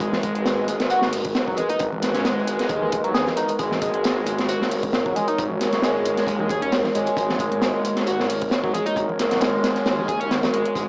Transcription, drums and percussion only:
0.00 kick, closed hi-hat
0.13 snare, low conga
0.23 kick, closed hi-hat, high conga
0.35 closed hi-hat
0.46 snare, closed hi-hat
0.68 closed hi-hat, high bongo, high conga
0.80 snare, closed hi-hat
0.90 closed hi-hat
1.02 snare, high conga
1.13 closed hi-hat, open hi-hat
1.25 kick, closed hi-hat
1.35 snare, closed hi-hat
1.48 kick
1.57 closed hi-hat, low conga
1.69 closed hi-hat, high bongo, high conga
1.79 kick, closed hi-hat
1.93 low conga
2.02 snare, closed hi-hat, high conga
2.14 snare, closed hi-hat
2.25 snare, closed hi-hat
2.47 closed hi-hat, high bongo
2.59 snare, closed hi-hat
2.69 kick, closed hi-hat
2.81 low conga
2.92 kick, closed hi-hat, high conga
3.04 closed hi-hat
3.15 snare, closed hi-hat
3.27 snare, high bongo, low conga
3.37 closed hi-hat
3.48 closed hi-hat
3.59 kick, closed hi-hat
3.71 snare, low conga
3.82 kick, closed hi-hat, high conga
3.94 closed hi-hat
4.04 snare, closed hi-hat
4.25 closed hi-hat, high bongo, high conga
4.38 snare, closed hi-hat
4.48 closed hi-hat
4.61 snare, high conga
4.71 closed hi-hat, open hi-hat
4.83 kick, closed hi-hat
4.93 snare, closed hi-hat
5.06 kick
5.16 closed hi-hat, low conga
5.28 closed hi-hat, high bongo, high conga
5.38 kick, closed hi-hat
5.50 low conga
5.61 snare, closed hi-hat, high conga
5.73 snare, closed hi-hat
5.82 snare, closed hi-hat
6.05 closed hi-hat, high bongo
6.17 snare, closed hi-hat
6.27 kick, closed hi-hat
6.39 low conga
6.50 kick, closed hi-hat, high conga
6.62 closed hi-hat
6.72 snare, closed hi-hat
6.84 snare, high bongo, low conga
6.95 closed hi-hat
7.06 closed hi-hat
7.17 kick, closed hi-hat
7.29 snare, low conga
7.39 kick, closed hi-hat, high conga
7.52 closed hi-hat
7.62 snare, closed hi-hat
7.84 closed hi-hat, high bongo, high conga
7.96 snare, closed hi-hat
8.07 closed hi-hat
8.19 snare, high conga
8.30 closed hi-hat, open hi-hat
8.42 kick, closed hi-hat
8.51 snare, closed hi-hat
8.64 kick
8.74 closed hi-hat, low conga
8.86 closed hi-hat, high bongo, high conga
8.96 kick, closed hi-hat
9.09 low conga
9.19 snare, closed hi-hat, high conga
9.31 snare, closed hi-hat
9.41 snare, closed hi-hat
9.64 snare, closed hi-hat, high bongo
9.75 snare, closed hi-hat
9.86 snare, closed hi-hat
9.99 low conga
10.08 kick, closed hi-hat, high bongo, high conga
10.21 closed hi-hat
10.31 snare, closed hi-hat
10.43 snare, closed hi-hat, high bongo, low conga
10.54 closed hi-hat, high bongo
10.65 closed hi-hat
10.75 kick, closed hi-hat

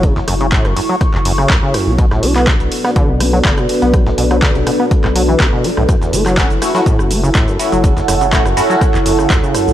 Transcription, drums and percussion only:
0.03 kick, closed hi-hat
0.16 snare
0.28 cross-stick, closed hi-hat, open hi-hat
0.41 closed hi-hat
0.52 kick, snare, clap, closed hi-hat
0.65 cross-stick, closed hi-hat
0.77 closed hi-hat, open hi-hat
1.01 kick, cross-stick, closed hi-hat
1.14 clap
1.25 closed hi-hat, open hi-hat
1.38 cross-stick
1.50 kick, snare, clap, closed hi-hat
1.74 cross-stick, closed hi-hat, open hi-hat
1.98 kick, closed hi-hat
2.11 cross-stick, snare
2.23 closed hi-hat, open hi-hat
2.36 clap, closed hi-hat
2.47 kick, cross-stick, snare, clap, closed hi-hat
2.60 closed hi-hat
2.72 closed hi-hat, open hi-hat
2.85 cross-stick, snare
2.96 kick, closed hi-hat
3.20 cross-stick, closed hi-hat, open hi-hat
3.45 kick, snare, clap, closed hi-hat
3.58 cross-stick, closed hi-hat
3.69 closed hi-hat, open hi-hat
3.82 closed hi-hat
3.94 kick, cross-stick, closed hi-hat
4.06 snare
4.18 closed hi-hat, open hi-hat
4.31 cross-stick, closed hi-hat
4.42 kick, snare, clap, closed hi-hat
4.55 closed hi-hat
4.67 cross-stick, closed hi-hat, open hi-hat
4.91 kick, closed hi-hat
5.04 cross-stick, clap
5.16 closed hi-hat, open hi-hat
5.40 kick, cross-stick, snare, clap, closed hi-hat
5.64 closed hi-hat, open hi-hat
5.77 cross-stick
5.89 kick, cross-stick, closed hi-hat, shaker
6.01 snare, shaker
6.13 closed hi-hat, open hi-hat, shaker
6.26 cross-stick, clap, closed hi-hat, shaker
6.37 kick, snare, clap, closed hi-hat, shaker
6.50 closed hi-hat, shaker
6.62 cross-stick, closed hi-hat, open hi-hat, shaker
6.75 snare, shaker
6.86 kick, closed hi-hat, shaker
6.99 cross-stick, shaker
7.11 closed hi-hat, open hi-hat, shaker
7.24 shaker
7.35 kick, cross-stick, snare, clap, closed hi-hat, shaker
7.48 closed hi-hat, shaker
7.59 closed hi-hat, open hi-hat, shaker
7.72 closed hi-hat, shaker
7.84 kick, closed hi-hat, shaker
7.97 snare, shaker
8.08 cross-stick, closed hi-hat, open hi-hat, shaker
8.21 closed hi-hat, shaker
8.33 kick, snare, clap, closed hi-hat, shaker
8.45 cross-stick, closed hi-hat, shaker
8.57 closed hi-hat, open hi-hat, shaker
8.71 shaker
8.81 kick, cross-stick, closed hi-hat, shaker
8.95 clap, shaker
9.06 closed hi-hat, open hi-hat, shaker
9.19 cross-stick, shaker
9.30 kick, snare, clap, closed hi-hat, shaker
9.44 shaker
9.55 cross-stick, closed hi-hat, open hi-hat, shaker
9.68 shaker

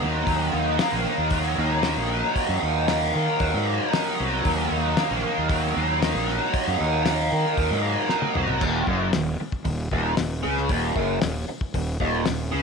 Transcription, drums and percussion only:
0.27 kick, open hi-hat
0.79 snare, open hi-hat
1.30 kick, open hi-hat
1.83 snare, open hi-hat
2.36 kick, open hi-hat
2.88 snare, open hi-hat
3.40 kick, open hi-hat
3.93 snare, open hi-hat
4.45 kick, open hi-hat
4.97 snare, open hi-hat
5.50 kick, open hi-hat
6.02 snare, open hi-hat
6.28 snare
6.54 kick, open hi-hat
7.05 snare, open hi-hat
7.58 kick, open hi-hat
8.09 snare
8.22 high tom
8.35 mid tom
8.48 floor tom
8.61 kick, crash
8.87 kick
9.13 snare, open hi-hat
9.52 kick
9.65 kick, open hi-hat
9.91 kick
10.17 snare, open hi-hat
10.57 snare
10.69 kick, open hi-hat
10.96 kick
11.22 snare, open hi-hat
11.61 kick
11.74 kick, open hi-hat
12.00 kick
12.26 snare, open hi-hat

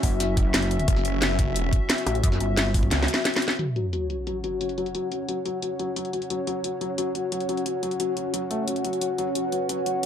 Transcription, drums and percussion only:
0.03 kick, open hi-hat
0.20 snare, closed hi-hat
0.37 kick, closed hi-hat
0.54 snare, closed hi-hat
0.63 closed hi-hat
0.71 closed hi-hat
0.79 closed hi-hat
0.88 kick, closed hi-hat
0.96 snare
1.05 closed hi-hat
1.22 snare, closed hi-hat
1.39 kick, closed hi-hat
1.56 closed hi-hat
1.73 kick, closed hi-hat
1.90 snare, closed hi-hat
1.98 closed hi-hat
2.07 closed hi-hat
2.15 closed hi-hat
2.24 kick, closed hi-hat
2.32 snare
2.40 closed hi-hat
2.57 snare, closed hi-hat
2.74 kick, open hi-hat
2.83 kick
2.91 snare, closed hi-hat
3.03 snare
3.08 closed hi-hat
3.14 snare
3.25 snare, closed hi-hat
3.34 snare, closed hi-hat
3.42 closed hi-hat
3.48 snare, closed hi-hat
3.59 closed hi-hat
3.76 closed hi-hat
3.93 closed hi-hat
4.10 closed hi-hat
4.27 closed hi-hat
4.44 closed hi-hat
4.61 closed hi-hat
4.69 closed hi-hat
4.78 closed hi-hat
4.86 closed hi-hat
4.95 closed hi-hat
5.12 closed hi-hat
5.29 closed hi-hat
5.46 closed hi-hat
5.62 closed hi-hat
5.79 closed hi-hat
5.96 closed hi-hat
6.05 closed hi-hat
6.13 closed hi-hat
6.22 closed hi-hat
6.30 closed hi-hat
6.47 closed hi-hat
6.64 closed hi-hat
6.81 closed hi-hat
6.98 closed hi-hat
7.15 closed hi-hat
7.32 closed hi-hat
7.40 closed hi-hat
7.49 closed hi-hat
7.57 closed hi-hat
7.66 closed hi-hat
7.83 closed hi-hat
7.91 closed hi-hat
8.00 closed hi-hat
8.17 closed hi-hat
8.34 closed hi-hat
8.51 closed hi-hat
8.68 closed hi-hat
8.76 closed hi-hat
8.85 closed hi-hat
8.93 closed hi-hat
9.01 closed hi-hat
9.18 closed hi-hat
9.35 closed hi-hat
9.52 closed hi-hat
9.69 closed hi-hat
9.86 closed hi-hat

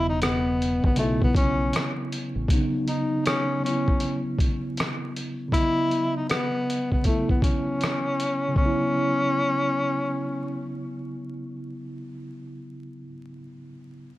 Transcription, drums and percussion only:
0.22 cross-stick, closed hi-hat
0.62 closed hi-hat
0.84 kick
0.96 closed hi-hat
1.22 kick
1.35 kick, closed hi-hat
1.73 cross-stick, closed hi-hat
2.12 closed hi-hat
2.48 kick, closed hi-hat
2.88 closed hi-hat
3.26 cross-stick, closed hi-hat
3.66 closed hi-hat
3.88 kick
4.00 closed hi-hat
4.39 kick, closed hi-hat
4.77 cross-stick, closed hi-hat
5.16 closed hi-hat
5.52 kick, closed hi-hat
5.91 closed hi-hat
6.30 cross-stick, closed hi-hat
6.70 closed hi-hat
6.92 kick
7.04 kick, closed hi-hat
7.29 kick
7.42 kick, closed hi-hat
7.81 cross-stick, closed hi-hat
8.20 closed hi-hat
8.56 kick

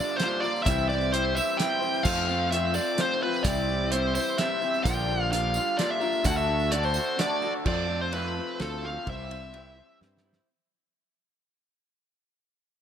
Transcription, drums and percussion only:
0.20 snare, closed hi-hat, tambourine
0.43 tambourine
0.56 tambourine
0.66 kick, closed hi-hat, tambourine
0.90 tambourine
1.01 tambourine
1.14 closed hi-hat
1.37 tambourine
1.60 snare, closed hi-hat
1.82 tambourine
1.94 tambourine
2.05 kick, tambourine, crash
2.29 tambourine
2.52 closed hi-hat
2.74 tambourine
2.98 snare, closed hi-hat, tambourine
3.34 tambourine
3.44 kick, closed hi-hat, tambourine
3.69 tambourine
3.92 closed hi-hat
4.15 tambourine
4.38 snare, closed hi-hat, tambourine
4.62 tambourine
4.74 tambourine
4.85 kick, closed hi-hat, tambourine
5.08 tambourine
5.33 closed hi-hat
5.54 tambourine
5.79 snare, closed hi-hat, tambourine
6.01 tambourine
6.12 tambourine
6.24 kick, closed hi-hat, tambourine
6.60 tambourine
6.72 closed hi-hat
6.83 tambourine
6.94 tambourine
7.19 snare, closed hi-hat
7.42 tambourine
7.66 kick, crash
8.13 ride
8.60 snare, ride
9.07 kick, ride
9.31 ride
9.54 ride
10.02 snare
10.17 snare
10.33 snare

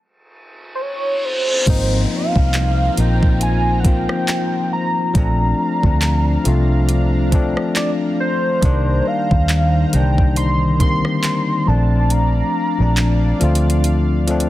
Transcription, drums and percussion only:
1.67 kick, closed hi-hat, crash
2.36 kick
2.54 clap, closed hi-hat
2.97 closed hi-hat
3.23 kick
3.41 closed hi-hat
3.85 kick, closed hi-hat
4.09 cross-stick
4.28 clap, closed hi-hat
5.15 kick, closed hi-hat
5.83 kick
6.02 clap, closed hi-hat
6.45 closed hi-hat
6.89 closed hi-hat
7.32 kick, closed hi-hat
7.57 cross-stick
7.76 clap, closed hi-hat
8.63 kick, closed hi-hat
9.31 kick
9.49 clap, closed hi-hat
9.93 closed hi-hat
10.18 kick
10.36 closed hi-hat
10.80 kick, closed hi-hat
11.05 cross-stick
11.24 clap, closed hi-hat
12.10 closed hi-hat
12.97 clap, closed hi-hat
13.41 closed hi-hat
13.55 closed hi-hat
13.70 closed hi-hat
13.84 closed hi-hat
14.28 closed hi-hat
14.40 closed hi-hat

